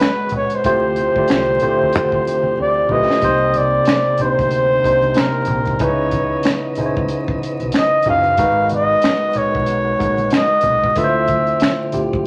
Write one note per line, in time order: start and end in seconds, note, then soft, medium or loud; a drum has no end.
0.00 0.60 C#3 medium
0.00 0.62 G#3 medium
0.00 0.67 G#3 loud
0.00 0.62 B3 medium
0.00 0.66 B3 medium
0.00 0.62 F#4 medium
0.00 0.66 F#4 loud
0.00 0.53 G#4 medium
0.00 0.67 A#4 loud
0.00 0.33 B4 loud
0.00 0.66 B4 loud
0.00 0.67 C#5 loud
0.00 0.53 D#5 medium
0.00 finger snap medium
0.00 snare loud
0.00 muted conga soft
0.29 closed hi-hat medium
0.29 high conga medium
0.29 low conga medium
0.36 0.57 C#5 medium
0.50 closed hi-hat soft
0.56 2.60 C5 medium
0.64 1.08 D2 medium
0.64 3.20 C3 medium
0.64 1.07 D3 medium
0.64 3.19 F3 medium
0.64 1.07 A3 medium
0.64 3.20 C4 medium
0.64 1.07 E4 medium
0.64 1.07 F4 medium
0.64 3.20 G4 medium
0.64 1.08 G4 medium
0.64 1.08 C5 loud
0.64 kick medium
0.64 closed hi-hat medium
0.64 muted conga soft
0.96 closed hi-hat medium
0.96 muted conga soft
0.96 high conga soft
1.16 1.55 D3 medium
1.16 1.56 A3 medium
1.16 1.56 E4 medium
1.16 1.56 F4 medium
1.16 1.56 G4 medium
1.16 1.56 D5 medium
1.16 muted fingered electric bass stroke soft
1.16 kick medium
1.28 1.58 C2 medium
1.28 finger snap medium
1.28 snare loud
1.28 closed hi-hat medium
1.60 2.72 D3 medium
1.60 2.72 A3 medium
1.60 2.73 E4 medium
1.60 2.73 F4 medium
1.60 2.73 G4 medium
1.60 2.73 C5 medium
1.60 closed hi-hat medium
1.60 muted conga soft
1.60 low conga medium
1.81 1.96 D2 medium
1.81 low conga soft
1.92 2.28 D3 medium
1.92 closed hi-hat medium
1.92 muted conga soft
2.12 kick medium
2.27 2.54 D2 medium
2.27 closed hi-hat medium
2.43 high conga medium
2.57 2.86 D2 medium
2.57 muted conga soft
2.61 2.94 D5 medium
2.89 3.07 B1 medium
2.89 3.19 D3 medium
2.89 3.19 A3 medium
2.89 3.19 E4 medium
2.89 3.19 F4 medium
2.89 3.19 G4 medium
2.89 3.19 B4 medium
2.89 3.59 D#5 loud
2.89 high conga medium
2.89 low conga medium
3.11 snare medium
3.21 3.77 C2 medium
3.21 5.77 C3 medium
3.21 4.07 C3 loud
3.21 5.77 G3 medium
3.21 5.78 A#3 medium
3.21 4.07 A#3 medium
3.21 5.77 C4 medium
3.21 4.07 C4 medium
3.21 4.08 D#4 medium
3.21 4.08 C5 loud
3.21 kick loud
3.21 closed hi-hat medium
3.21 muted conga soft
3.54 closed hi-hat medium
3.54 muted conga soft
3.54 high conga medium
3.58 4.21 D5 medium
3.85 finger snap medium
3.85 snare loud
3.85 closed hi-hat medium
3.85 muted conga soft
4.18 4.76 C3 medium
4.18 4.76 A#3 medium
4.18 4.76 D4 medium
4.18 4.76 D#4 medium
4.18 4.77 C5 medium
4.18 closed hi-hat medium
4.18 low conga medium
4.22 5.20 C5 loud
4.22 muted fingered electric bass stroke soft
4.39 4.78 D2 medium
4.39 kick medium
4.39 closed hi-hat soft
4.51 closed hi-hat medium
4.84 5.12 C2 medium
4.84 5.68 C3 medium
4.84 5.68 A#3 medium
4.84 5.69 D4 medium
4.84 5.69 D#4 medium
4.84 5.69 C5 medium
4.84 kick medium
4.84 closed hi-hat medium
5.02 closed hi-hat soft
5.02 high conga medium
5.14 finger snap medium
5.14 snare loud
5.14 closed hi-hat medium
5.14 muted conga soft
5.14 high conga soft
5.19 5.86 A#4 medium
5.45 closed hi-hat medium
5.45 high conga medium
5.45 low conga medium
5.51 5.77 A#1 loud
5.65 kick medium
5.65 closed hi-hat soft
5.79 6.35 C#2 medium
5.79 6.64 C#3 medium
5.79 8.36 C#3 medium
5.79 8.36 E3 medium
5.79 8.36 B3 medium
5.79 6.65 C#4 medium
5.79 6.65 D#4 medium
5.79 6.65 E4 medium
5.79 6.65 B4 loud
5.79 8.36 D#5 medium
5.79 kick loud
5.79 closed hi-hat medium
5.84 6.79 C#5 medium
6.11 kick medium
6.11 closed hi-hat medium
6.11 muted conga soft
6.11 high conga medium
6.43 finger snap medium
6.43 snare loud
6.43 closed hi-hat medium
6.43 muted conga soft
6.75 7.88 C#3 medium
6.75 7.89 C#4 medium
6.75 7.89 D#4 medium
6.75 7.89 E4 medium
6.75 6.86 C5 medium
6.75 muted fingered electric bass stroke soft
6.75 closed hi-hat medium
6.75 muted conga soft
6.75 low conga medium
6.86 7.93 C#5 medium
6.97 7.08 C#2 medium
6.97 kick medium
7.08 closed hi-hat medium
7.28 kick loud
7.42 muted fingered electric bass stroke soft
7.42 closed hi-hat medium
7.42 muted conga soft
7.60 7.73 B1 medium
7.60 closed hi-hat soft
7.60 high conga medium
7.72 finger snap medium
7.72 snare medium
7.72 closed hi-hat medium
7.72 muted conga soft
7.72 high conga medium
7.78 8.06 D#5 loud
8.03 8.34 C#3 medium
8.03 8.35 C#4 medium
8.03 closed hi-hat medium
8.03 muted conga soft
8.03 high conga medium
8.03 low conga medium
8.07 8.39 F#1 loud
8.07 8.35 D#4 medium
8.07 8.35 E4 medium
8.07 8.35 F#4 medium
8.07 8.69 F5 loud
8.23 closed hi-hat soft
8.37 8.93 G#1 medium
8.37 10.94 G#3 medium
8.37 9.23 G#3 medium
8.37 10.93 B3 medium
8.37 9.23 D#4 medium
8.37 10.93 F#4 medium
8.37 9.23 F#4 medium
8.37 9.23 A#4 medium
8.37 9.24 B4 loud
8.37 kick loud
8.37 closed hi-hat medium
8.69 closed hi-hat medium
8.69 high conga medium
8.74 9.39 D#5 loud
9.02 finger snap medium
9.02 snare loud
9.02 closed hi-hat medium
9.02 muted conga soft
9.33 9.91 G#3 medium
9.33 9.91 D#4 medium
9.33 9.91 F#4 medium
9.33 9.92 A#4 medium
9.33 9.92 C#5 medium
9.33 muted fingered electric bass stroke soft
9.33 closed hi-hat medium
9.33 low conga medium
9.38 10.33 C#5 medium
9.55 9.94 B1 medium
9.55 kick medium
9.66 closed hi-hat medium
9.66 muted conga soft
9.98 10.28 A#1 medium
9.98 10.84 G#3 medium
9.98 10.84 D#4 medium
9.98 10.84 F#4 medium
9.98 10.84 A#4 medium
9.98 10.84 C#5 medium
9.98 kick medium
9.98 closed hi-hat medium
10.17 closed hi-hat soft
10.17 high conga medium
10.30 finger snap medium
10.30 snare loud
10.30 closed hi-hat medium
10.30 muted conga soft
10.30 high conga soft
10.35 11.00 D#5 loud
10.61 closed hi-hat medium
10.61 high conga medium
10.61 low conga medium
10.66 10.92 B1 medium
10.84 kick medium
10.95 11.51 D2 medium
10.95 12.27 D3 medium
10.95 11.81 D3 loud
10.95 12.27 F3 medium
10.95 11.81 A3 medium
10.95 12.27 C4 medium
10.95 11.81 E4 medium
10.95 11.81 F4 medium
10.95 11.05 B4 medium
10.95 11.94 E5 medium
10.95 kick loud
10.95 closed hi-hat medium
10.95 muted conga soft
11.04 11.85 C5 loud
11.28 kick medium
11.28 closed hi-hat medium
11.28 high conga medium
11.47 closed hi-hat soft
11.60 finger snap medium
11.60 snare loud
11.60 closed hi-hat medium
11.60 muted conga soft
11.92 12.27 D3 medium
11.92 12.27 A3 medium
11.92 12.27 E4 medium
11.92 12.27 F4 medium
11.92 12.27 G4 medium
11.92 muted fingered electric bass stroke soft
11.92 closed hi-hat medium
11.92 low conga medium
12.13 12.27 D2 medium
12.13 kick loud